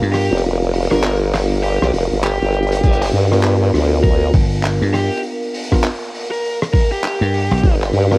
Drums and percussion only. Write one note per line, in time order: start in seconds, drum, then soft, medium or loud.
0.02 open hi-hat soft
0.14 cross-stick soft
0.14 open hi-hat medium
0.31 open hi-hat soft
0.38 closed hi-hat medium
0.42 open hi-hat medium
0.62 open hi-hat soft
0.73 open hi-hat medium
0.82 open hi-hat medium
0.91 cross-stick soft
0.91 open hi-hat medium
0.91 open hi-hat soft
0.95 open hi-hat soft
0.98 open hi-hat soft
1.01 clap loud
1.01 open hi-hat soft
1.04 open hi-hat medium
1.09 open hi-hat soft
1.13 open hi-hat soft
1.18 open hi-hat soft
1.22 open hi-hat soft
1.34 cross-stick soft
1.34 clap soft
1.34 open hi-hat medium
1.52 open hi-hat soft
1.63 open hi-hat medium
1.82 cross-stick medium
1.93 open hi-hat medium
2.12 open hi-hat soft
2.23 clap loud
2.23 open hi-hat medium
2.42 open hi-hat soft
2.54 closed hi-hat medium
2.63 closed hi-hat soft
2.67 closed hi-hat soft
2.72 closed hi-hat soft
2.72 closed hi-hat medium
2.74 closed hi-hat medium
2.78 closed hi-hat soft
2.83 kick loud
2.83 closed hi-hat soft
2.83 open hi-hat medium
2.83 crash medium
2.93 closed hi-hat medium
3.02 clap soft
3.02 closed hi-hat medium
3.02 open hi-hat soft
3.13 open hi-hat medium
3.32 cross-stick soft
3.32 open hi-hat medium
3.43 clap loud
3.43 open hi-hat medium
3.62 open hi-hat soft
3.74 cross-stick soft
3.74 open hi-hat medium
3.78 cross-stick soft
3.83 cross-stick soft
3.87 cross-stick soft
3.92 open hi-hat soft
4.04 kick loud
4.04 open hi-hat medium
4.22 open hi-hat soft
4.34 kick loud
4.34 open hi-hat medium
4.52 open hi-hat medium
4.63 clap loud
4.63 open hi-hat medium
4.82 open hi-hat soft
4.94 cross-stick soft
4.94 open hi-hat medium
5.12 open hi-hat medium
5.17 closed hi-hat medium
5.23 open hi-hat medium
5.43 open hi-hat soft
5.54 open hi-hat medium
5.64 open hi-hat medium
5.72 kick medium
5.72 cross-stick soft
5.72 open hi-hat soft
5.72 open hi-hat medium
5.78 open hi-hat soft
5.80 clap loud
5.80 open hi-hat soft
5.84 open hi-hat medium
5.90 open hi-hat soft
6.03 open hi-hat soft
6.15 open hi-hat medium
6.32 open hi-hat medium
6.44 open hi-hat medium
6.62 cross-stick medium
6.62 open hi-hat soft
6.74 kick loud
6.74 open hi-hat medium
6.93 open hi-hat soft
7.04 clap loud
7.04 open hi-hat medium
7.23 open hi-hat soft
7.34 open hi-hat medium
7.52 open hi-hat soft
7.58 closed hi-hat medium
7.63 kick loud
7.63 open hi-hat medium
7.82 clap soft
7.82 open hi-hat soft
7.93 open hi-hat medium
8.11 cross-stick soft
8.11 open hi-hat soft